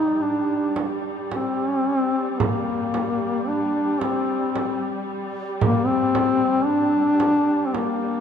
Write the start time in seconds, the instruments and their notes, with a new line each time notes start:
Already playing: string section G3, duduk D#4
0.21 duduk D4
0.76 frame drum
1.32 duduk C4, frame drum
2.30 duduk C4
2.39 duduk A#3, frame drum
2.94 frame drum
3.48 duduk D4
4.00 duduk C4, frame drum
4.56 frame drum
5.61 duduk A#3, frame drum
5.86 duduk C4
6.15 frame drum
6.65 duduk D4
7.20 frame drum
7.67 duduk C4
7.74 duduk A#3, frame drum